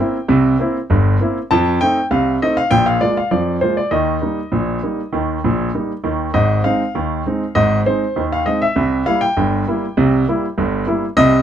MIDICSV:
0, 0, Header, 1, 2, 480
1, 0, Start_track
1, 0, Tempo, 604839
1, 234, Time_signature, 2, 2, 24, 8
1, 9064, End_track
2, 0, Start_track
2, 0, Title_t, "Grand piano"
2, 0, Program_c, 0, 0
2, 0, Note_on_c, 0, 58, 43
2, 0, Note_on_c, 0, 60, 43
2, 0, Note_on_c, 0, 64, 48
2, 0, Note_on_c, 0, 79, 79
2, 121, Note_off_c, 0, 58, 0
2, 125, Note_off_c, 0, 60, 0
2, 128, Note_off_c, 0, 64, 0
2, 226, Note_on_c, 0, 36, 71
2, 226, Note_on_c, 0, 48, 88
2, 433, Note_off_c, 0, 36, 0
2, 433, Note_off_c, 0, 48, 0
2, 471, Note_on_c, 0, 58, 44
2, 477, Note_on_c, 0, 60, 51
2, 481, Note_on_c, 0, 64, 52
2, 603, Note_off_c, 0, 58, 0
2, 608, Note_off_c, 0, 60, 0
2, 611, Note_off_c, 0, 64, 0
2, 713, Note_on_c, 0, 31, 75
2, 718, Note_on_c, 0, 43, 66
2, 912, Note_off_c, 0, 79, 0
2, 917, Note_off_c, 0, 31, 0
2, 919, Note_off_c, 0, 43, 0
2, 958, Note_on_c, 0, 58, 49
2, 958, Note_on_c, 0, 60, 43
2, 966, Note_on_c, 0, 64, 48
2, 1088, Note_off_c, 0, 58, 0
2, 1088, Note_off_c, 0, 60, 0
2, 1093, Note_off_c, 0, 64, 0
2, 1196, Note_on_c, 0, 81, 93
2, 1198, Note_on_c, 0, 41, 87
2, 1203, Note_on_c, 0, 53, 72
2, 1398, Note_off_c, 0, 41, 0
2, 1401, Note_off_c, 0, 53, 0
2, 1420, Note_off_c, 0, 81, 0
2, 1435, Note_on_c, 0, 79, 91
2, 1440, Note_on_c, 0, 57, 45
2, 1444, Note_on_c, 0, 63, 51
2, 1445, Note_on_c, 0, 60, 45
2, 1568, Note_off_c, 0, 57, 0
2, 1571, Note_off_c, 0, 63, 0
2, 1572, Note_off_c, 0, 60, 0
2, 1624, Note_off_c, 0, 79, 0
2, 1672, Note_on_c, 0, 36, 62
2, 1674, Note_on_c, 0, 77, 75
2, 1676, Note_on_c, 0, 48, 59
2, 1863, Note_off_c, 0, 77, 0
2, 1874, Note_off_c, 0, 36, 0
2, 1876, Note_off_c, 0, 48, 0
2, 1923, Note_on_c, 0, 75, 77
2, 1926, Note_on_c, 0, 57, 38
2, 1926, Note_on_c, 0, 63, 52
2, 1928, Note_on_c, 0, 60, 47
2, 2035, Note_off_c, 0, 75, 0
2, 2039, Note_on_c, 0, 77, 85
2, 2053, Note_off_c, 0, 57, 0
2, 2053, Note_off_c, 0, 63, 0
2, 2054, Note_off_c, 0, 60, 0
2, 2148, Note_on_c, 0, 79, 99
2, 2150, Note_on_c, 0, 46, 71
2, 2152, Note_on_c, 0, 34, 68
2, 2153, Note_off_c, 0, 77, 0
2, 2267, Note_off_c, 0, 79, 0
2, 2271, Note_on_c, 0, 77, 78
2, 2352, Note_off_c, 0, 46, 0
2, 2353, Note_off_c, 0, 34, 0
2, 2388, Note_off_c, 0, 77, 0
2, 2388, Note_on_c, 0, 74, 76
2, 2390, Note_on_c, 0, 56, 42
2, 2395, Note_on_c, 0, 58, 42
2, 2395, Note_on_c, 0, 65, 44
2, 2507, Note_off_c, 0, 74, 0
2, 2519, Note_on_c, 0, 77, 67
2, 2520, Note_off_c, 0, 56, 0
2, 2525, Note_off_c, 0, 58, 0
2, 2525, Note_off_c, 0, 65, 0
2, 2627, Note_on_c, 0, 53, 61
2, 2628, Note_on_c, 0, 74, 62
2, 2632, Note_off_c, 0, 77, 0
2, 2633, Note_on_c, 0, 41, 53
2, 2820, Note_off_c, 0, 74, 0
2, 2831, Note_off_c, 0, 53, 0
2, 2834, Note_off_c, 0, 41, 0
2, 2866, Note_on_c, 0, 72, 65
2, 2874, Note_on_c, 0, 56, 36
2, 2874, Note_on_c, 0, 58, 38
2, 2879, Note_on_c, 0, 65, 44
2, 2987, Note_off_c, 0, 72, 0
2, 2992, Note_on_c, 0, 74, 67
2, 3004, Note_off_c, 0, 58, 0
2, 3005, Note_off_c, 0, 56, 0
2, 3008, Note_off_c, 0, 65, 0
2, 3103, Note_on_c, 0, 75, 70
2, 3104, Note_on_c, 0, 39, 59
2, 3108, Note_on_c, 0, 51, 66
2, 3110, Note_off_c, 0, 74, 0
2, 3310, Note_off_c, 0, 39, 0
2, 3313, Note_off_c, 0, 51, 0
2, 3345, Note_on_c, 0, 55, 40
2, 3351, Note_on_c, 0, 58, 37
2, 3353, Note_on_c, 0, 63, 41
2, 3479, Note_off_c, 0, 55, 0
2, 3483, Note_off_c, 0, 58, 0
2, 3484, Note_off_c, 0, 63, 0
2, 3585, Note_on_c, 0, 34, 57
2, 3585, Note_on_c, 0, 46, 51
2, 3792, Note_off_c, 0, 34, 0
2, 3792, Note_off_c, 0, 46, 0
2, 3830, Note_on_c, 0, 55, 36
2, 3833, Note_on_c, 0, 58, 40
2, 3838, Note_on_c, 0, 63, 38
2, 3963, Note_off_c, 0, 55, 0
2, 3965, Note_off_c, 0, 58, 0
2, 3969, Note_off_c, 0, 63, 0
2, 4067, Note_on_c, 0, 51, 60
2, 4068, Note_on_c, 0, 39, 60
2, 4262, Note_off_c, 0, 51, 0
2, 4263, Note_off_c, 0, 39, 0
2, 4319, Note_on_c, 0, 34, 61
2, 4319, Note_on_c, 0, 46, 59
2, 4509, Note_off_c, 0, 46, 0
2, 4510, Note_off_c, 0, 34, 0
2, 4521, Note_off_c, 0, 75, 0
2, 4558, Note_on_c, 0, 63, 33
2, 4559, Note_on_c, 0, 55, 36
2, 4560, Note_on_c, 0, 58, 37
2, 4690, Note_off_c, 0, 55, 0
2, 4690, Note_off_c, 0, 63, 0
2, 4691, Note_off_c, 0, 58, 0
2, 4790, Note_on_c, 0, 39, 54
2, 4791, Note_on_c, 0, 51, 60
2, 4986, Note_off_c, 0, 39, 0
2, 4987, Note_off_c, 0, 51, 0
2, 5030, Note_on_c, 0, 75, 75
2, 5031, Note_on_c, 0, 32, 61
2, 5031, Note_on_c, 0, 44, 68
2, 5239, Note_off_c, 0, 32, 0
2, 5239, Note_off_c, 0, 44, 0
2, 5263, Note_off_c, 0, 75, 0
2, 5271, Note_on_c, 0, 77, 74
2, 5272, Note_on_c, 0, 56, 40
2, 5276, Note_on_c, 0, 60, 43
2, 5278, Note_on_c, 0, 63, 47
2, 5407, Note_off_c, 0, 56, 0
2, 5410, Note_off_c, 0, 60, 0
2, 5411, Note_off_c, 0, 63, 0
2, 5514, Note_on_c, 0, 51, 56
2, 5518, Note_on_c, 0, 39, 59
2, 5721, Note_off_c, 0, 51, 0
2, 5723, Note_off_c, 0, 39, 0
2, 5762, Note_on_c, 0, 60, 39
2, 5763, Note_on_c, 0, 56, 41
2, 5770, Note_on_c, 0, 63, 38
2, 5894, Note_off_c, 0, 56, 0
2, 5894, Note_off_c, 0, 60, 0
2, 5899, Note_off_c, 0, 63, 0
2, 5965, Note_off_c, 0, 77, 0
2, 5992, Note_on_c, 0, 75, 83
2, 5994, Note_on_c, 0, 44, 71
2, 5996, Note_on_c, 0, 32, 58
2, 6187, Note_off_c, 0, 75, 0
2, 6200, Note_off_c, 0, 44, 0
2, 6202, Note_off_c, 0, 32, 0
2, 6240, Note_on_c, 0, 72, 67
2, 6242, Note_on_c, 0, 56, 42
2, 6244, Note_on_c, 0, 60, 39
2, 6249, Note_on_c, 0, 63, 43
2, 6373, Note_off_c, 0, 56, 0
2, 6374, Note_off_c, 0, 60, 0
2, 6378, Note_off_c, 0, 63, 0
2, 6477, Note_on_c, 0, 51, 54
2, 6478, Note_on_c, 0, 39, 57
2, 6527, Note_off_c, 0, 72, 0
2, 6606, Note_on_c, 0, 77, 74
2, 6681, Note_off_c, 0, 39, 0
2, 6681, Note_off_c, 0, 51, 0
2, 6712, Note_on_c, 0, 75, 68
2, 6715, Note_on_c, 0, 56, 43
2, 6721, Note_on_c, 0, 63, 42
2, 6722, Note_off_c, 0, 77, 0
2, 6722, Note_on_c, 0, 60, 37
2, 6835, Note_off_c, 0, 75, 0
2, 6838, Note_on_c, 0, 76, 76
2, 6848, Note_off_c, 0, 56, 0
2, 6852, Note_off_c, 0, 60, 0
2, 6852, Note_off_c, 0, 63, 0
2, 6951, Note_on_c, 0, 36, 70
2, 6954, Note_on_c, 0, 48, 69
2, 7157, Note_off_c, 0, 36, 0
2, 7159, Note_off_c, 0, 48, 0
2, 7179, Note_off_c, 0, 76, 0
2, 7191, Note_on_c, 0, 77, 81
2, 7194, Note_on_c, 0, 55, 50
2, 7197, Note_on_c, 0, 64, 50
2, 7201, Note_on_c, 0, 58, 43
2, 7308, Note_on_c, 0, 79, 83
2, 7313, Note_off_c, 0, 77, 0
2, 7326, Note_off_c, 0, 55, 0
2, 7328, Note_off_c, 0, 64, 0
2, 7331, Note_off_c, 0, 58, 0
2, 7434, Note_on_c, 0, 31, 63
2, 7435, Note_on_c, 0, 43, 67
2, 7638, Note_off_c, 0, 31, 0
2, 7639, Note_off_c, 0, 43, 0
2, 7679, Note_on_c, 0, 55, 46
2, 7682, Note_on_c, 0, 58, 48
2, 7684, Note_on_c, 0, 64, 44
2, 7810, Note_off_c, 0, 55, 0
2, 7812, Note_off_c, 0, 58, 0
2, 7814, Note_off_c, 0, 64, 0
2, 7913, Note_on_c, 0, 36, 72
2, 7914, Note_on_c, 0, 48, 82
2, 8118, Note_off_c, 0, 36, 0
2, 8118, Note_off_c, 0, 48, 0
2, 8159, Note_on_c, 0, 58, 45
2, 8161, Note_on_c, 0, 55, 45
2, 8164, Note_on_c, 0, 64, 55
2, 8289, Note_off_c, 0, 58, 0
2, 8290, Note_off_c, 0, 55, 0
2, 8293, Note_off_c, 0, 64, 0
2, 8394, Note_on_c, 0, 31, 73
2, 8394, Note_on_c, 0, 43, 66
2, 8597, Note_off_c, 0, 31, 0
2, 8597, Note_off_c, 0, 43, 0
2, 8597, Note_off_c, 0, 79, 0
2, 8624, Note_on_c, 0, 55, 44
2, 8628, Note_on_c, 0, 58, 49
2, 8630, Note_on_c, 0, 64, 54
2, 8758, Note_off_c, 0, 55, 0
2, 8761, Note_off_c, 0, 58, 0
2, 8762, Note_off_c, 0, 64, 0
2, 8862, Note_on_c, 0, 48, 87
2, 8862, Note_on_c, 0, 75, 98
2, 8867, Note_on_c, 0, 36, 76
2, 9064, Note_off_c, 0, 36, 0
2, 9064, Note_off_c, 0, 48, 0
2, 9064, Note_off_c, 0, 75, 0
2, 9064, End_track
0, 0, End_of_file